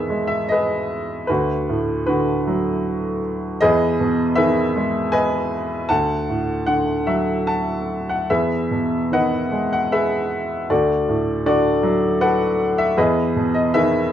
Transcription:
0.00 1.25 E2 soft
0.00 0.86 B2 soft
0.00 1.25 D#3 soft
0.00 0.52 G#4 medium
0.00 0.52 B4 soft
0.00 0.49 D#5 medium
0.00 0.26 E5 medium
0.10 1.26 G#3 soft
0.27 0.49 E5 medium
0.49 1.26 G#4 soft
0.49 1.26 B4 soft
0.49 1.31 D#5 medium
1.27 3.57 D2 soft
1.27 2.07 F#4 soft
1.27 2.05 B4 medium
1.69 3.19 A2 soft
2.06 3.58 D3 soft
2.06 3.20 F#4 soft
2.06 2.80 B4 medium
2.47 3.58 F#3 soft
3.61 5.86 E2 medium
3.61 4.36 G#4 medium
3.61 4.35 B4 medium
3.61 4.33 D#5 medium
4.00 5.48 B2 soft
4.36 5.86 D#3 medium
4.36 5.48 G#4 medium
4.36 5.11 B4 medium
4.36 5.15 E5 medium
4.76 5.87 G#3 soft
5.12 5.86 B4 medium
5.12 5.86 D#5 medium
5.12 5.92 G#5 medium
5.89 8.26 D2 medium
5.89 6.65 F#5 medium
5.89 6.69 A5 medium
6.29 7.85 A2 soft
6.66 8.26 D3 soft
6.66 7.08 F#5 medium
7.07 8.26 F#3 soft
7.07 7.49 E5 medium
7.47 8.08 F#5 soft
7.47 8.11 A5 medium
8.09 8.28 F#5 medium
8.30 10.66 E2 soft
8.30 9.49 G#4 soft
8.30 9.12 B4 soft
8.30 9.14 E5 medium
8.71 10.27 B2 soft
9.12 10.66 D#3 soft
9.12 9.91 B4 medium
9.12 10.28 D#5 medium
9.12 9.71 F#5 medium
9.52 10.66 G#3 soft
9.73 9.91 F#5 medium
9.92 10.66 G#4 medium
9.92 10.66 B4 soft
9.92 10.73 E5 medium
10.70 12.94 D2 soft
10.70 11.45 F#4 soft
10.70 11.45 A4 soft
10.70 11.45 D5 medium
11.09 12.56 A2 soft
11.46 12.94 D3 soft
11.46 12.56 F#4 medium
11.46 12.20 A4 medium
11.46 12.24 D5 medium
11.83 12.94 F#3 medium
12.21 12.94 A4 medium
12.21 12.94 B4 medium
12.21 12.75 F#5 medium
12.78 12.98 E5 medium
12.98 14.12 E2 medium
12.98 13.73 G#4 medium
12.98 13.73 B4 medium
12.98 13.53 D#5 medium
13.36 14.12 B2 soft
13.54 13.75 D#5 medium
13.74 14.12 D#3 medium
13.74 14.12 G#4 soft
13.74 14.12 B4 medium
13.74 14.12 E5 medium

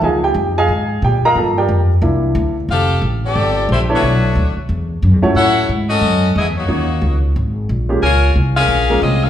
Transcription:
0.01 0.34 C#2 medium
0.01 0.54 F3 medium
0.01 0.54 A#3 soft
0.01 0.54 D#4 medium
0.01 0.24 G#4 medium
0.01 0.24 D#5 medium
0.01 0.24 F5 medium
0.01 0.24 G#5 medium
0.24 0.55 G4 medium
0.24 0.55 G5 medium
0.34 0.68 F2 loud
0.58 1.01 G#4 medium
0.58 1.01 D#5 medium
0.58 1.01 F5 medium
0.58 1.00 G#5 loud
0.68 1.01 G#2 medium
1.02 1.22 A#2 loud
1.02 1.25 G4 medium
1.02 1.24 G5 medium
1.23 1.37 A#4 medium
1.23 1.37 D#5 medium
1.23 1.37 F5 medium
1.23 1.37 A#5 loud
1.23 muted upright bass stroke soft
1.35 1.68 G2 medium
1.35 1.88 A#3 soft
1.35 1.89 F4 medium
1.35 1.58 A4 medium
1.35 1.58 A5 medium
1.58 1.89 G4 medium
1.58 1.89 A#4 medium
1.58 1.89 D5 medium
1.58 1.89 G5 medium
1.68 2.01 F2 medium
2.02 2.34 C2 loud
2.02 2.54 A#3 medium
2.02 2.54 D4 medium
2.02 2.54 E4 medium
2.35 2.68 D2 loud
2.69 3.01 F1 medium
2.69 3.02 C4 loud
2.69 3.02 G4 loud
2.69 3.02 A4 loud
2.69 3.02 F5 loud
3.02 3.35 A1 medium
3.26 3.67 C4 medium
3.26 3.68 G4 medium
3.26 3.68 A4 medium
3.26 3.68 D5 loud
3.35 3.68 G1 loud
3.69 4.01 A#1 loud
3.73 3.82 A3 medium
3.73 3.81 E4 medium
3.73 3.81 G4 medium
3.73 3.81 C5 loud
3.89 4.01 B3 medium
3.89 4.01 D4 medium
3.89 4.01 E4 medium
3.89 4.01 A4 medium
3.89 4.01 C#5 medium
3.95 4.55 A3 medium
3.95 4.55 D4 medium
3.95 4.55 F#4 medium
3.95 4.55 C#5 loud
4.02 4.35 B1 medium
4.35 4.55 D2 loud
4.57 muted upright bass stroke soft
4.69 5.01 E2 medium
5.02 5.13 F#2 loud
5.13 5.23 E2 medium
5.22 5.34 D2 medium
5.22 5.66 A3 medium
5.22 5.66 C#4 medium
5.22 5.66 E4 medium
5.22 5.66 F#4 medium
5.22 5.67 C#5 medium
5.35 5.68 A2 medium
5.35 5.67 E4 loud
5.35 5.67 A4 loud
5.35 5.67 C#5 loud
5.35 5.67 F#5 loud
5.69 6.01 G#2 loud
5.90 6.32 C#4 medium
5.90 6.32 F#4 medium
5.90 6.32 A4 medium
5.90 6.32 D#5 loud
6.01 6.34 F#2 medium
6.36 6.68 E2 loud
6.36 6.47 B3 medium
6.36 6.47 E4 medium
6.36 6.47 G#4 medium
6.36 6.47 D#5 medium
6.58 7.20 A#3 medium
6.58 7.20 D#4 medium
6.58 7.20 F#4 medium
6.58 7.20 C#5 medium
6.68 7.01 D#2 medium
6.68 6.87 A#3 medium
6.68 6.87 C#4 medium
6.68 6.88 D#4 medium
6.68 6.87 F#4 medium
6.68 6.88 C#5 medium
7.02 7.34 C#2 medium
7.36 7.68 G#1 medium
7.69 8.01 A#1 loud
7.89 8.01 G#3 medium
7.89 8.01 A#3 medium
7.89 8.01 C#4 medium
7.89 8.01 F4 medium
7.89 8.01 G4 medium
8.03 8.35 C#2 medium
8.03 8.34 F4 loud
8.03 8.34 A#4 loud
8.03 8.33 C#5 loud
8.03 8.33 G#5 loud
8.36 8.68 C2 loud
8.57 8.99 C#4 loud
8.57 8.99 G#4 medium
8.57 8.99 A#4 loud
8.57 8.99 F5 loud
8.68 9.01 A#1 medium
8.90 9.30 G#3 medium
8.90 9.30 A#3 medium
8.90 9.30 C#4 medium
8.90 9.30 F4 medium
8.90 9.30 A#4 medium
9.02 9.30 C2 loud
9.02 9.23 C4 medium
9.02 9.23 F4 medium
9.02 9.23 G#4 medium
9.02 9.24 D#5 loud
9.24 9.30 C#4 medium
9.24 9.30 G#4 medium
9.24 9.30 A#4 medium
9.24 9.30 F5 loud

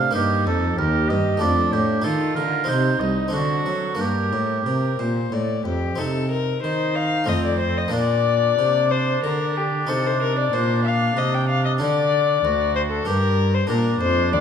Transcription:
0.00 0.12 C3 soft
0.00 0.14 C3 medium
0.00 0.11 A3 soft
0.00 0.12 C4 soft
0.00 0.15 D4 medium
0.00 0.13 F4 soft
0.00 0.14 F5 loud
0.11 0.43 A#3 soft
0.11 1.36 D#4 soft
0.11 0.46 G4 medium
0.15 0.48 G2 medium
0.15 0.44 G2 soft
0.15 0.77 D#4 medium
0.46 0.77 F2 medium
0.46 0.75 F2 medium
0.46 0.78 A4 medium
0.78 1.12 D#2 medium
0.78 1.07 D#2 medium
0.78 1.44 G4 medium
0.78 1.10 A#4 medium
1.09 1.42 G2 medium
1.09 1.39 G2 soft
1.09 1.39 D#5 medium
1.37 2.01 A3 soft
1.37 2.02 D4 soft
1.37 2.02 F4 soft
1.37 1.74 D5 medium
1.42 1.70 F2 soft
1.42 1.73 F2 medium
1.42 2.05 D4 medium
1.72 2.04 A2 medium
1.72 2.02 A2 medium
1.72 2.06 G4 medium
2.02 2.33 D#3 soft
2.02 2.36 D#3 medium
2.02 2.64 D#4 soft
2.02 2.71 F4 medium
2.02 2.65 G4 soft
2.02 2.35 A4 medium
2.35 2.65 D3 soft
2.35 2.68 D3 medium
2.35 2.67 A#4 medium
2.64 3.27 C4 soft
2.64 3.29 D#4 soft
2.64 3.30 G4 soft
2.68 2.97 C3 soft
2.68 3.00 C3 medium
2.68 3.33 D#4 medium
2.68 3.02 C5 medium
3.00 3.32 C2 medium
3.00 3.30 C2 soft
3.00 3.33 D#5 medium
3.28 3.95 C4 soft
3.28 3.95 D4 soft
3.33 3.62 D3 soft
3.33 3.65 D3 medium
3.33 3.68 D4 medium
3.33 4.01 F#4 medium
3.66 3.96 F#3 soft
3.66 3.98 F#3 medium
3.66 3.98 A4 medium
3.95 4.29 A#3 soft
3.95 4.30 D4 soft
3.95 4.58 A#4 medium
3.99 4.34 G2 soft
3.99 4.29 G2 soft
3.99 5.33 G4 medium
4.33 4.65 A2 medium
4.33 4.63 A2 soft
4.65 4.99 C3 medium
4.65 4.96 C3 soft
4.65 5.01 A#4 soft
4.99 5.29 A#2 soft
4.99 5.32 A#2 medium
4.99 5.35 C5 medium
5.32 5.62 A2 soft
5.32 5.65 A2 medium
5.32 5.65 D5 medium
5.65 5.95 F2 soft
5.65 5.98 F2 medium
5.65 6.00 G4 medium
5.96 6.60 C3 medium
5.96 7.23 C4 soft
5.96 7.24 D#4 soft
5.96 6.30 A4 medium
6.31 6.62 A#4 medium
6.63 7.29 D#3 medium
6.63 7.24 D#3 soft
6.63 7.29 D#4 medium
6.63 6.97 C5 medium
6.95 7.30 F5 medium
7.24 7.92 F2 medium
7.24 7.89 A3 soft
7.24 7.90 C4 soft
7.24 7.92 C4 medium
7.24 7.90 F4 soft
7.29 7.89 F2 medium
7.29 7.44 D#5 medium
7.45 7.59 D5 medium
7.60 7.79 C5 medium
7.78 7.93 D#5 medium
7.88 9.82 A#3 soft
7.88 9.83 D4 soft
7.88 9.83 F4 soft
7.92 8.57 A#2 medium
7.92 8.54 A#2 soft
7.92 12.39 D4 medium
7.92 8.93 D5 medium
8.58 9.22 C3 medium
8.58 9.20 C3 soft
8.91 9.23 C5 medium
9.23 9.87 D3 medium
9.23 9.84 D3 soft
9.23 9.58 A#4 medium
9.57 9.90 G4 medium
9.87 10.51 C3 medium
9.87 10.49 C3 soft
9.87 11.75 D#4 soft
9.87 10.08 A4 medium
9.87 11.76 C5 soft
10.07 10.22 C5 medium
10.22 10.37 A#4 medium
10.39 10.55 D5 medium
10.52 11.15 A#2 medium
10.52 11.12 A#2 medium
10.52 10.84 C5 medium
10.85 11.19 F5 medium
11.16 11.82 C3 medium
11.16 11.76 C3 soft
11.16 11.36 D#5 medium
11.34 11.48 G5 medium
11.49 11.64 F5 medium
11.65 11.72 D#5 medium
11.78 12.43 D3 medium
11.78 12.40 D3 medium
11.78 13.02 D4 soft
11.78 13.03 A4 soft
11.78 12.73 D5 medium
12.44 13.05 D2 medium
12.44 13.03 D2 soft
12.44 13.05 F#4 medium
12.75 12.82 C5 medium
12.90 13.08 A4 medium
13.05 13.68 G2 medium
13.05 13.66 G2 medium
13.05 13.66 D4 soft
13.05 13.46 G4 medium
13.05 13.67 G4 soft
13.05 13.56 A#4 medium
13.54 13.69 C5 medium
13.67 13.99 A#2 medium
13.67 13.98 A#2 soft
13.67 14.40 D4 soft
13.67 14.40 D4 medium
13.67 14.40 G4 soft
13.67 14.00 A#4 medium
14.00 14.34 F2 medium
14.00 14.29 F2 soft
14.00 14.32 C5 medium
14.32 14.40 D2 medium
14.32 14.40 D2 soft
14.32 14.39 D5 medium

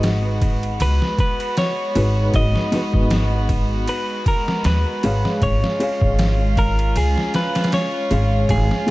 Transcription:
0.00 0.77 G#1 medium
0.00 1.91 G#3 medium
0.00 8.91 G#3 medium
0.00 5.37 B3 medium
0.00 1.91 D#4 medium
0.00 1.92 F#4 medium
0.00 5.38 F#4 medium
0.00 1.93 B4 medium
0.00 0.81 D#5 loud
0.00 snare loud
0.00 ride medium
0.42 kick loud
0.42 ride medium
0.63 ride soft
0.80 0.99 C#2 loud
0.80 1.19 B4 loud
0.80 ride medium
1.02 snare soft
1.18 1.58 B4 medium
1.18 kick loud
1.18 ride medium
1.40 ride soft
1.57 2.35 C#5 medium
1.57 snare loud
1.57 ride medium
1.95 2.30 G#1 medium
1.95 2.68 G#3 medium
1.95 2.68 D#4 medium
1.95 2.69 F#4 medium
1.95 2.69 B4 medium
1.95 ride medium
2.34 2.53 G#1 loud
2.34 3.85 D#5 loud
2.34 kick loud
2.34 ride medium
2.56 snare soft
2.72 4.99 G#3 medium
2.72 5.00 B3 medium
2.72 4.99 D#4 medium
2.72 5.00 F#4 medium
2.72 snare soft
2.72 ride medium
2.94 3.85 G#1 medium
2.94 kick medium
3.11 snare loud
3.11 ride medium
3.49 kick loud
3.49 ride medium
3.88 4.24 B4 medium
3.88 ride medium
4.26 4.66 A#4 medium
4.26 kick loud
4.26 ride medium
4.48 snare medium
4.64 4.84 D#2 medium
4.64 5.43 B4 medium
4.64 snare loud
4.64 ride medium
5.03 5.22 G#1 medium
5.03 5.76 G#3 medium
5.03 5.76 G#4 medium
5.03 5.77 C#5 medium
5.03 5.77 F5 medium
5.03 ride medium
5.25 snare medium
5.42 5.61 G#1 loud
5.42 8.91 C#4 medium
5.42 8.91 F4 medium
5.42 6.15 C#5 medium
5.42 kick loud
5.42 ride medium
5.64 snare medium
5.79 8.06 G#3 medium
5.79 8.07 G#4 medium
5.79 8.07 C#5 medium
5.79 8.08 F5 medium
5.79 ride medium
6.02 6.92 G#1 medium
6.02 kick medium
6.19 snare loud
6.19 ride medium
6.57 6.97 A#4 loud
6.57 kick medium
6.57 ride medium
6.79 ride soft
6.96 7.14 C#2 loud
6.96 7.32 G#4 loud
6.96 ride medium
7.18 snare soft
7.34 7.73 B4 medium
7.34 snare loud
7.34 ride medium
7.55 snare medium
7.55 ride medium
7.64 snare medium
7.64 ride medium
7.72 8.52 C#5 loud
7.72 snare loud
7.72 ride medium
8.11 8.45 G#1 loud
8.11 8.84 G#3 medium
8.11 8.84 G#4 medium
8.11 8.84 C#5 medium
8.11 8.84 F5 medium
8.11 ride medium
8.49 8.68 G#1 loud
8.49 8.91 G#4 medium
8.49 kick loud
8.49 ride medium
8.71 snare soft
8.87 8.91 G#3 medium
8.87 8.91 G#4 medium
8.87 ride medium

